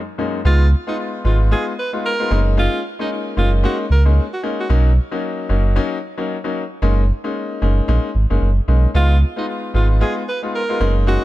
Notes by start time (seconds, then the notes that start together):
0.18 F#2 G#3 A#3 C#4 D#4
0.45 C#2 G#3 B3 D#4 F4
0.87 G#3 B3 D#4 F4
1.24 G#1 G#3 B3 D#4 F4
1.51 G#3 B3 D#4 F4 G#4
1.79 B4
1.93 G#3 B3 D#4 F4
2.06 A#4
2.19 G#3 B3 D#4 F4
2.31 F#1 G#3 A#3 C#4 D#4
2.57 G#3 A#3 C#4 D#4 F4
2.99 G#3 A#3 C#4 D#4
3.37 F#1 G#3 A#3 C#4 D#4 F4
3.63 G#3 A#3 C#4 D#4 F#4
3.90 C#2 A#4
4.05 G#3 A#3 C#4 D#4
4.33 F#4
4.43 G#3 A#3 C#4 D#4
4.60 F#4
4.69 B1 F#3 A#3 C#4 D#4
5.11 F#3 A#3 C#4 D#4
5.49 F#1 F#3 A#3 C#4 D#4
5.76 F#3 A#3 C#4 D#4
6.18 F#3 A#3 C#4 D#4
6.44 F#3 A#3 C#4 D#4
6.82 F#1 G#3 A#3 C#4 D#4
7.24 G#3 A#3 C#4 D#4
7.62 F#1 G#3 A#3 C#4 D#4
7.88 A#1 G#3 A#3 C#4 D#4
8.15 G#1
8.30 F#1 G#3 A#3 C#4 D#4
8.41 F#1
8.68 B1 G#3 A#3 C#4 D#4
8.94 C#2 G#3 B3 D#4 F4
9.36 G#3 B3 D#4 F4
9.74 G#1 G#3 B3 D#4 F4
10.00 G#3 B3 D#4 F4 G#4
10.29 B4
10.42 G#3 B3 D#4 F4
10.55 A#4
10.69 G#3 B3 D#4 F4
10.80 F#1 G#3 A#3 C#4 D#4
11.07 G#3 A#3 C#4 D#4 F#4